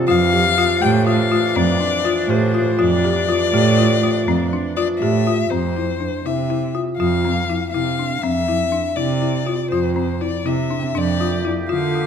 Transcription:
Already playing: F3
0.07 F2 E3 D4 F4 F5
0.33 G4
0.58 F4
0.81 A2 G4 G5
1.07 F4 F5
1.32 F4
1.56 F2 C4 D5
1.80 D4
2.05 F4
2.28 A2 G4 C5
2.54 F4
2.79 F2 F4 D5
3.04 G4
3.29 F4
3.53 A2 G4
3.78 F4
4.03 F4
4.27 F2 C4
4.53 D4
4.76 F4 D5
4.99 A2 G4 E5
5.27 F4
5.50 F2 C4 C5
5.77 E4
6.00 D4
6.24 C3 E4 E5
6.50 E4
6.75 F4
6.97 F2 F4 F5
7.25 C4
7.50 E4
7.71 C3 E4 F5
7.99 D4
8.22 F2 C4 E5
8.48 E4
8.72 D4
8.96 C3 E4 D5
9.22 E4
9.46 F4
9.71 F2 F4 C5
9.96 C4 C5
10.21 E4 D5
10.45 C3 E4 E5
10.71 D4
10.95 F2 A3 A#3 D4 G4 D5
11.20 F4
11.45 E4
11.69 D3 F4 F5
11.95 F4

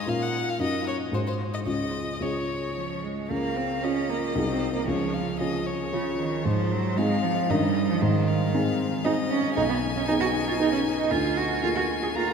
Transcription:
Already playing: G#2 D#4 F#4 C5 D#5
0.06 A#2 C#4 F4 A#4 F5
0.22 F#5
0.49 F5
0.59 F#2 D#4 F#4 A#4 D#5
0.88 C#5
1.12 G#2 D#4 F#4 G#4 C5
1.27 C5
1.54 D#5
1.65 C#2 C#4 F4 G#4 D#5
2.20 C#2 C#4 F4 G#4 C#5
2.76 F3
3.04 G#3
3.30 C#2 A#3 F5
3.56 C4
3.83 C#4 F4 G#4 D#5
4.09 A#3
4.35 C2 G#3 D#4 F#4 G#4
4.48 C4
4.75 A#3
4.87 C#2 F3 C#5
5.13 F5
5.39 C#4 F4 G#4 D#5
5.66 C#5
5.93 C#3 C#4 F4 G#4
6.19 D#3
6.44 G#2 F3 C5
6.71 F#3
6.97 G#3 C4 D#4 G#4 F5
7.23 F3
7.49 G2 D#3 C#4 D#4 A#4 D#5
7.63 G3
7.90 F3
8.02 G#2 D#3 C5
8.28 F5
8.54 C4 D#4 G#4
9.04 C4 D#4 G#4 D#5
9.30 C#4
9.56 B1 D#4 G#5
9.69 B3
9.95 C#4
10.07 B3 D#4 G#4
10.20 F#4
10.47 F4
10.59 B3 D#4 G#4
10.72 C#4
10.99 D#4
11.11 D2 F4 G#5
11.37 F#4
11.63 A#3 F4 G#4
11.75 F#4
12.02 G#4
12.15 A#3 F4 G#4 A#5

